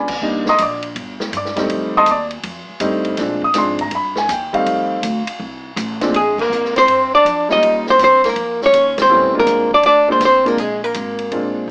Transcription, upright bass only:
0.00 0.21 C#2 loud
0.21 0.58 C2 medium
0.59 0.95 A#1 medium
0.96 1.32 G1 medium
1.33 1.69 G2 loud
1.70 2.06 F2 medium
2.06 2.43 D#2 medium
2.43 2.67 F2 medium
2.69 muted upright bass stroke soft
2.80 3.17 G2 loud
3.18 3.54 A#2 medium
3.54 3.91 G#2 medium
3.91 4.28 G2 medium
4.29 4.65 D#2 loud
4.66 5.02 F2 medium
5.03 5.26 D2 loud
5.28 muted upright bass stroke soft
5.40 5.76 C2 medium
5.76 6.13 A1 loud
6.14 6.49 A#1 medium
6.50 6.86 C2 medium
6.88 7.24 G2 medium
7.25 7.61 F2 medium
7.62 7.98 D#2 medium
7.99 8.35 G2 medium
8.36 8.72 F2 medium
8.73 9.08 D#2 loud
9.09 9.32 A#1 medium
9.33 muted upright bass stroke soft
9.47 9.83 C2 medium
9.83 10.20 D2 medium
10.20 10.57 C2 medium
10.57 10.94 A#1 medium
10.95 11.31 G#1 medium
11.32 11.67 A#1 medium
11.67 11.71 D2 medium

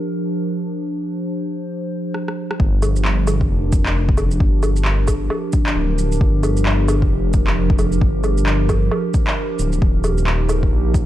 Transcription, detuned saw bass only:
2.60 3.49 G1 medium
3.50 4.16 F1 loud
4.17 4.39 F1 loud
4.41 5.29 G1 medium
5.76 6.20 D1 medium
6.21 7.10 G1 medium
7.11 7.77 F1 medium
7.79 8.00 F1 loud
8.02 8.90 G1 medium
9.59 9.80 D1 medium
9.82 10.71 D#1 medium
10.71 11.06 A#1 loud

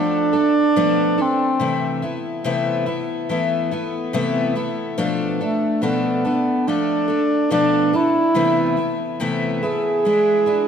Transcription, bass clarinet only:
0.00 1.23 D4 medium
1.21 2.04 C4 medium
5.42 5.84 A3 medium
5.82 6.69 B3 medium
6.68 7.51 D4 medium
7.52 7.97 D4 medium
7.95 9.21 E4 loud
9.62 10.68 G#4 loud

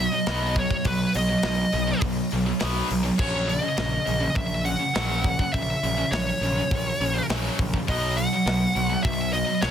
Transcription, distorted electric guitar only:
0.00 0.11 B2 medium
0.00 0.11 F#3 medium
0.12 0.26 B2 medium
0.12 0.26 F#3 medium
0.27 0.55 B2 loud
0.27 0.55 F#3 loud
0.27 0.55 B3 loud
0.57 0.71 B2 medium
0.57 0.70 F#3 medium
0.71 0.84 B2 medium
0.71 0.85 F#3 medium
0.86 1.12 B2 medium
0.86 1.12 F#3 medium
1.15 1.29 B2 medium
1.15 1.29 F#3 medium
1.30 1.43 B2 medium
1.30 1.44 F#3 medium
1.44 1.71 B2 medium
1.44 1.71 F#3 medium
1.73 1.87 B2 medium
1.73 1.86 F#3 medium
1.87 2.00 B2 medium
1.87 2.01 F#3 medium
2.01 2.28 B2 medium
2.01 2.29 F#3 medium
2.32 2.45 B2 medium
2.32 2.45 F#3 medium
2.46 2.58 B2 medium
2.46 2.59 F#3 medium
2.60 2.88 B2 medium
2.60 2.87 F#3 medium
2.60 2.89 B3 loud
2.88 3.02 B2 medium
2.88 3.02 F#3 medium
3.03 3.18 B2 medium
3.03 3.18 F#3 medium
3.18 3.46 F#2 loud
3.18 3.46 C#3 loud
3.18 3.47 F#3 loud
3.47 3.61 F#2 medium
3.47 3.61 C#3 medium
3.62 3.75 F#2 medium
3.62 3.76 C#3 medium
3.77 4.04 F#2 medium
3.77 4.04 C#3 medium
4.06 4.20 F#2 medium
4.06 4.19 C#3 medium
4.20 4.34 F#2 medium
4.20 4.35 C#3 loud
4.35 4.63 F#2 medium
4.35 4.63 C#3 medium
4.65 4.79 F#2 medium
4.65 4.79 C#3 medium
4.80 4.93 F#2 medium
4.80 4.95 C#3 medium
4.94 5.23 F#2 medium
4.94 5.23 C#3 medium
4.94 5.24 F#3 loud
5.24 5.38 F#2 medium
5.24 5.38 C#3 medium
5.39 5.52 F#2 medium
5.39 5.53 C#3 medium
5.54 5.80 F#2 medium
5.54 5.81 C#3 medium
5.84 5.97 F#2 medium
5.84 5.96 C#3 medium
5.98 6.12 F#2 medium
5.98 6.12 C#3 loud
6.13 6.39 F#2 medium
6.13 6.39 C#3 medium
6.43 6.56 F#2 medium
6.43 6.56 C#3 medium
6.57 6.70 F#2 medium
6.57 6.71 C#3 medium
6.72 6.98 F#2 medium
6.72 6.98 C#3 medium
7.01 7.14 F#2 medium
7.01 7.14 C#3 medium
7.15 7.28 F#2 medium
7.15 7.29 C#3 medium
7.29 7.57 F#2 medium
7.29 7.57 C#3 loud
7.29 7.58 F#3 loud
7.59 7.72 F#2 medium
7.59 7.72 C#3 medium
7.73 7.87 F#2 medium
7.73 7.88 C#3 medium
7.87 8.15 B2 loud
7.87 8.15 F#3 loud
7.87 8.16 B3 loud
8.17 8.31 B2 medium
8.17 8.32 F#3 medium
8.32 8.45 B2 medium
8.32 8.45 F#3 medium
8.46 8.72 B2 medium
8.46 8.73 F#3 loud
8.75 8.89 B2 medium
8.75 8.88 F#3 medium
8.90 9.03 B2 medium
8.90 9.03 F#3 medium
9.04 9.31 B2 medium
9.04 9.31 F#3 medium
9.33 9.46 B2 medium
9.33 9.46 F#3 medium
9.47 9.61 B2 medium
9.47 9.62 F#3 medium
9.62 9.71 B2 medium
9.62 9.71 F#3 loud
9.62 9.71 B3 medium

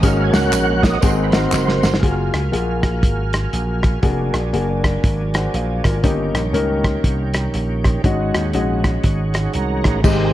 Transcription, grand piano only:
0.03 0.79 G#2 medium
0.03 0.69 C#4 medium
0.03 0.69 D#4 medium
0.03 0.69 F#4 medium
0.03 0.70 G#4 medium
1.02 1.79 G#2 medium
1.02 1.27 C4 medium
1.02 1.27 D#4 medium
1.02 1.27 F#4 medium
1.02 1.27 G#4 medium
1.33 1.80 C4 medium
1.33 1.81 D#4 medium
1.33 1.81 F#4 medium
1.33 1.81 A#4 medium
2.03 2.39 A#3 medium
2.03 2.39 F4 medium
2.03 2.39 F#4 medium
2.03 2.39 G#4 medium
2.52 3.19 A#3 medium
2.52 3.19 F4 medium
2.52 3.19 F#4 medium
2.52 3.19 G#4 medium
4.02 4.39 A#3 medium
4.02 4.39 D4 medium
4.02 4.39 F#4 medium
4.02 4.39 G#4 medium
4.53 5.20 A#3 medium
4.53 5.20 D4 medium
4.53 5.20 F#4 medium
4.53 5.20 G#4 medium
5.35 5.53 C5 medium
5.35 5.53 F#5 medium
5.54 5.83 C5 soft
5.54 5.83 F5 medium
5.85 6.32 F4 soft
5.85 6.32 A#4 medium
6.03 6.80 G2 medium
6.03 6.39 A#3 medium
6.03 6.40 C#4 medium
6.03 6.40 D#4 medium
6.03 6.40 G4 medium
6.53 7.20 A#3 medium
6.53 7.20 C#4 medium
6.53 7.20 D#4 medium
6.53 7.21 A#4 medium
8.04 8.81 G#2 medium
8.04 8.40 G#3 medium
8.04 8.40 C#4 medium
8.04 8.40 D#4 medium
8.04 8.40 F#4 medium
8.54 9.21 G#3 medium
8.54 9.21 C#4 medium
8.54 9.21 D#4 medium
8.54 9.21 F#4 medium
10.04 10.33 G#2 medium
10.04 10.33 G#3 medium
10.04 10.33 A#3 medium
10.04 10.33 C4 medium
10.04 10.33 D#4 medium
10.04 10.33 G4 medium

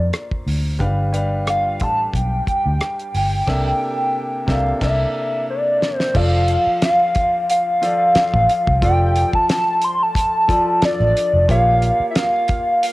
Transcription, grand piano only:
0.00 0.82 A#3 medium
0.00 0.81 F4 medium
0.00 0.82 A4 medium
0.00 0.82 C5 medium
0.00 0.82 D5 medium
0.79 1.01 G3 medium
0.79 1.01 D4 medium
0.79 1.02 B4 medium
0.79 1.02 F5 medium
1.13 1.97 G3 medium
1.13 1.97 D4 medium
1.13 1.98 B4 medium
1.13 1.98 F5 medium
3.47 3.70 C3 medium
3.47 3.71 A#3 medium
3.47 3.71 D4 medium
3.47 3.71 A4 medium
3.47 3.71 E5 medium
4.47 4.70 C3 medium
4.47 4.71 A#3 medium
4.47 4.71 D4 medium
4.47 4.71 A4 medium
4.47 4.72 E5 medium
4.81 5.04 C3 medium
4.81 5.05 A#3 medium
4.81 5.05 D4 medium
4.81 5.05 A4 medium
4.81 5.05 E5 medium
6.14 6.99 F3 medium
6.14 6.99 F4 medium
6.14 6.99 A4 medium
6.14 6.99 D5 medium
7.82 8.44 F3 medium
7.82 8.44 F4 medium
7.82 8.45 A4 medium
7.82 8.45 D5 medium
8.82 9.66 F3 medium
8.82 9.66 F4 medium
8.82 9.66 A4 medium
8.82 9.67 D5 medium
10.48 11.11 F3 medium
10.48 11.11 F4 medium
10.48 11.11 A4 medium
10.48 11.11 D5 medium
11.48 12.32 A#3 medium
11.48 12.32 F4 medium
11.48 12.33 G4 medium
11.48 12.33 C#5 medium

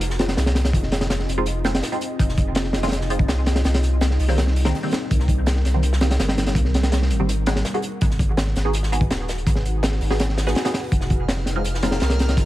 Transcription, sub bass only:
0.00 0.36 F1 loud
0.37 0.72 C2 medium
0.73 1.27 F1 loud
1.28 1.82 F1 loud
2.19 2.73 F1 loud
2.74 3.27 F1 loud
3.29 3.63 C2 medium
3.65 4.18 C2 loud
4.19 4.73 C2 loud
5.11 5.64 C2 loud
5.65 6.18 C2 loud
6.19 6.54 G1 medium
6.55 7.12 C2 loud
7.10 7.63 G#1 loud
8.02 8.55 G#1 loud
8.56 9.09 G#1 loud
9.10 9.45 D#1 medium
9.47 10.00 G#1 loud
10.01 10.54 G#1 loud
10.92 11.45 F1 loud
11.47 12.00 F1 loud
12.01 12.36 C2 medium
12.37 12.45 F1 loud

